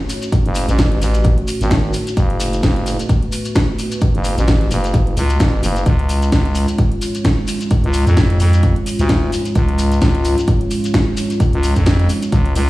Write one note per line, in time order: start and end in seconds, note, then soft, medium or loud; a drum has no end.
0.00 5.82 A3 medium
0.00 5.82 F#4 medium
0.00 2.13 C#5 medium
0.00 sub drop medium
0.09 open hi-hat medium
0.09 shekere loud
0.22 closed hi-hat medium
0.22 shekere medium
0.32 kick loud
0.32 closed hi-hat medium
0.32 shekere soft
0.45 0.66 F#1 loud
0.45 closed hi-hat soft
0.55 open hi-hat loud
0.55 shekere loud
0.69 1.00 A1 loud
0.69 closed hi-hat medium
0.69 shekere medium
0.79 kick loud
0.79 snare loud
0.79 closed hi-hat medium
0.79 shekere soft
0.92 closed hi-hat soft
1.02 1.36 A1 loud
1.02 open hi-hat loud
1.02 shekere medium
1.14 closed hi-hat medium
1.14 shekere medium
1.24 kick loud
1.24 closed hi-hat medium
1.24 shekere soft
1.38 closed hi-hat soft
1.48 open hi-hat loud
1.48 shekere loud
1.61 1.92 G#1 loud
1.61 closed hi-hat medium
1.61 shekere medium
1.71 kick loud
1.71 snare loud
1.71 closed hi-hat medium
1.71 shekere soft
1.93 open hi-hat loud
1.93 shekere medium
2.07 closed hi-hat medium
2.07 shekere medium
2.17 2.62 F#1 loud
2.17 5.82 B4 medium
2.17 kick loud
2.17 closed hi-hat medium
2.17 shekere soft
2.30 closed hi-hat soft
2.40 open hi-hat loud
2.40 shekere loud
2.53 closed hi-hat medium
2.53 shekere medium
2.62 2.97 F#1 loud
2.62 kick loud
2.62 snare loud
2.62 closed hi-hat medium
2.62 shekere soft
2.76 closed hi-hat soft
2.86 open hi-hat loud
2.86 shekere loud
2.99 closed hi-hat medium
2.99 shekere medium
3.09 kick loud
3.09 closed hi-hat medium
3.09 shekere soft
3.22 closed hi-hat soft
3.32 open hi-hat loud
3.32 shekere loud
3.45 closed hi-hat medium
3.45 shekere medium
3.55 kick loud
3.55 snare loud
3.55 closed hi-hat medium
3.55 shekere soft
3.79 open hi-hat loud
3.79 shekere loud
3.92 closed hi-hat medium
3.92 shekere medium
4.01 kick loud
4.01 closed hi-hat medium
4.01 shekere soft
4.15 4.36 F#1 medium
4.15 closed hi-hat soft
4.24 open hi-hat loud
4.24 shekere medium
4.38 4.69 A1 medium
4.38 closed hi-hat medium
4.38 shekere medium
4.48 kick loud
4.48 snare loud
4.48 closed hi-hat medium
4.48 shekere soft
4.61 closed hi-hat soft
4.71 5.15 F#1 loud
4.71 open hi-hat loud
4.71 shekere loud
4.84 closed hi-hat medium
4.84 shekere medium
4.94 kick loud
4.94 closed hi-hat medium
4.94 shekere soft
5.07 closed hi-hat soft
5.17 5.38 C#2 loud
5.17 open hi-hat loud
5.17 shekere loud
5.29 closed hi-hat medium
5.29 shekere medium
5.40 5.62 A1 loud
5.40 kick loud
5.40 snare loud
5.40 closed hi-hat medium
5.40 shekere soft
5.63 5.85 F#1 loud
5.63 open hi-hat loud
5.63 shekere loud
5.76 closed hi-hat medium
5.76 shekere soft
5.86 6.31 C#2 loud
5.86 12.70 G#3 medium
5.86 12.70 F4 medium
5.86 12.70 C#5 medium
5.86 kick loud
5.86 closed hi-hat medium
5.86 shekere soft
5.99 closed hi-hat soft
6.09 open hi-hat loud
6.09 shekere loud
6.22 closed hi-hat soft
6.22 shekere medium
6.32 6.66 C#2 loud
6.32 kick loud
6.32 snare loud
6.32 closed hi-hat medium
6.32 shekere soft
6.45 closed hi-hat soft
6.55 open hi-hat medium
6.55 shekere medium
6.68 closed hi-hat medium
6.68 shekere soft
6.78 kick loud
6.78 closed hi-hat medium
6.78 shekere soft
6.92 closed hi-hat soft
7.01 open hi-hat loud
7.01 shekere loud
7.15 closed hi-hat medium
7.15 shekere medium
7.25 kick loud
7.25 snare loud
7.25 closed hi-hat medium
7.25 shekere soft
7.48 open hi-hat medium
7.48 shekere medium
7.61 closed hi-hat medium
7.61 shekere medium
7.71 kick loud
7.71 closed hi-hat medium
7.71 shekere soft
7.84 8.05 C#2 loud
7.84 closed hi-hat soft
7.93 open hi-hat loud
7.93 shekere medium
8.07 8.38 F2 medium
8.07 closed hi-hat medium
8.07 shekere medium
8.17 kick loud
8.17 snare loud
8.17 closed hi-hat medium
8.17 shekere soft
8.30 closed hi-hat soft
8.40 8.74 F2 loud
8.40 open hi-hat medium
8.40 shekere medium
8.53 closed hi-hat medium
8.53 shekere medium
8.63 kick loud
8.63 closed hi-hat medium
8.63 shekere soft
8.76 closed hi-hat soft
8.86 open hi-hat loud
8.86 shekere medium
8.99 9.31 D2 loud
8.99 closed hi-hat medium
8.99 shekere medium
9.09 kick loud
9.09 snare loud
9.09 closed hi-hat medium
9.09 shekere soft
9.32 open hi-hat medium
9.32 shekere medium
9.45 closed hi-hat medium
9.45 shekere medium
9.55 10.00 C#2 loud
9.55 kick loud
9.55 closed hi-hat medium
9.55 shekere soft
9.68 closed hi-hat soft
9.78 open hi-hat loud
9.78 shekere medium
9.92 closed hi-hat medium
9.92 shekere medium
10.01 10.36 C#2 loud
10.01 kick loud
10.01 snare loud
10.01 closed hi-hat medium
10.01 shekere soft
10.15 closed hi-hat soft
10.25 open hi-hat medium
10.25 shekere medium
10.38 closed hi-hat medium
10.38 shekere medium
10.48 kick loud
10.48 closed hi-hat medium
10.48 shekere soft
10.61 closed hi-hat soft
10.71 open hi-hat loud
10.71 shekere medium
10.84 closed hi-hat medium
10.84 shekere medium
10.94 kick loud
10.94 snare loud
10.94 closed hi-hat medium
10.94 shekere soft
11.17 open hi-hat medium
11.17 shekere medium
11.30 closed hi-hat medium
11.30 shekere soft
11.40 kick loud
11.40 closed hi-hat medium
11.40 shekere soft
11.53 11.74 C#2 loud
11.53 closed hi-hat soft
11.63 open hi-hat loud
11.63 shekere medium
11.76 12.08 F2 medium
11.76 kick medium
11.76 closed hi-hat medium
11.76 shekere soft
11.86 kick loud
11.86 snare loud
11.86 closed hi-hat medium
11.86 shekere soft
11.99 closed hi-hat soft
12.09 open hi-hat medium
12.09 shekere medium
12.22 closed hi-hat medium
12.22 shekere soft
12.32 12.54 C#2 loud
12.32 kick loud
12.32 closed hi-hat medium
12.32 shekere soft
12.46 closed hi-hat soft
12.55 12.70 C#2 loud
12.55 open hi-hat loud
12.55 shekere medium